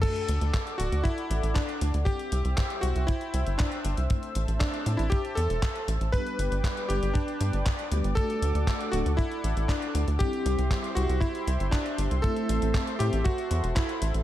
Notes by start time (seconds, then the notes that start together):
0.02 A3 D4 F#4 A4 D5 F#5 D6, kick, closed hi-hat, crash
0.16 closed hi-hat
0.29 D2, closed hi-hat
0.41 D2, closed hi-hat
0.54 kick, clap, closed hi-hat
0.67 closed hi-hat
0.78 D1 A3 D4 F#4 A4, closed hi-hat
0.92 D2, closed hi-hat
1.04 E4, kick, closed hi-hat
1.18 closed hi-hat
1.30 A1, closed hi-hat
1.43 A1, closed hi-hat
1.54 D4, kick, clap, closed hi-hat
1.69 closed hi-hat
1.81 D2, closed hi-hat
1.94 D2, closed hi-hat
2.05 G3 C4 E4 G4 C5 E5 G5 E6, kick, closed hi-hat
2.19 closed hi-hat
2.32 C2, closed hi-hat
2.45 C2, closed hi-hat
2.57 kick, clap, closed hi-hat
2.70 closed hi-hat
2.81 C2 G3 C4 F#4 G4, closed hi-hat
2.96 C2, closed hi-hat
3.07 E4, kick, closed hi-hat
3.21 closed hi-hat
3.34 C2, closed hi-hat
3.47 G1, closed hi-hat
3.58 D4, kick, clap, closed hi-hat
3.72 closed hi-hat
3.85 G1, closed hi-hat
3.97 C2, closed hi-hat
4.10 A3 C4 E4 A4 A5, kick, closed hi-hat
4.23 closed hi-hat
4.35 A1, closed hi-hat
4.48 A1, closed hi-hat
4.59 D4, kick, clap, closed hi-hat
4.74 closed hi-hat
4.86 A2 A3 C4 E4 A4, closed hi-hat
4.97 A1 E4, closed hi-hat
5.10 G4, kick, closed hi-hat
5.25 closed hi-hat
5.35 E2 A4, closed hi-hat
5.50 E1, closed hi-hat
5.63 kick, clap, closed hi-hat
5.76 closed hi-hat
5.88 A1, closed hi-hat
6.01 A1, closed hi-hat
6.12 G3 B3 D4 G4 B4 D5 G5 D6, kick, closed hi-hat
6.27 closed hi-hat
6.39 G1, closed hi-hat
6.52 G1, closed hi-hat
6.64 kick, clap, closed hi-hat
6.77 closed hi-hat
6.89 G1 G3 B3 D4 G4, closed hi-hat
7.03 G1, closed hi-hat
7.14 D4, kick, closed hi-hat
7.28 closed hi-hat
7.41 G2 G3 B3 D4 G4, closed hi-hat
7.53 G1, closed hi-hat
7.66 kick, clap, closed hi-hat
7.79 closed hi-hat
7.91 D2 G3 B3 D4 G4, closed hi-hat
8.04 G1, closed hi-hat
8.15 A3 D4 F#4 A4 F#5, kick, closed hi-hat
8.30 closed hi-hat
8.42 D2, closed hi-hat
8.55 D2, closed hi-hat
8.67 kick, clap, closed hi-hat
8.81 closed hi-hat
8.92 D1 A3 D4 F#4 A4, closed hi-hat
9.06 D2, closed hi-hat
9.17 E4, kick, closed hi-hat
9.32 closed hi-hat
9.44 A1, closed hi-hat
9.57 A1, closed hi-hat
9.68 D4, kick, clap, closed hi-hat
9.82 closed hi-hat
9.95 D2, closed hi-hat
10.08 D2, closed hi-hat
10.19 G3 C4 E4 G4 C5 E5 C6, kick, closed hi-hat
10.33 closed hi-hat
10.46 C2, closed hi-hat
10.59 C2, closed hi-hat
10.71 kick, clap, closed hi-hat
10.84 closed hi-hat
10.95 C2 G3 C4 E4 F#4 G4, closed hi-hat
11.09 C2, closed hi-hat
11.21 E4, kick, closed hi-hat
11.35 closed hi-hat
11.47 C2, closed hi-hat
11.60 G1, closed hi-hat
11.71 D4, kick, clap, closed hi-hat
11.86 closed hi-hat
11.98 G1, closed hi-hat
12.11 C2, closed hi-hat
12.22 A3 C4 E4 A4, kick, closed hi-hat
12.37 closed hi-hat
12.49 A1, closed hi-hat
12.62 A1, closed hi-hat
12.74 kick, clap, closed hi-hat
12.87 closed hi-hat
12.99 A2 A3 C4 E4 G4 A4, closed hi-hat
13.13 A1, closed hi-hat
13.24 F#4, kick, closed hi-hat
13.38 closed hi-hat
13.51 E2, closed hi-hat
13.64 E1, closed hi-hat
13.75 E4, kick, clap, closed hi-hat
13.89 closed hi-hat
14.02 A1, closed hi-hat
14.14 A1, closed hi-hat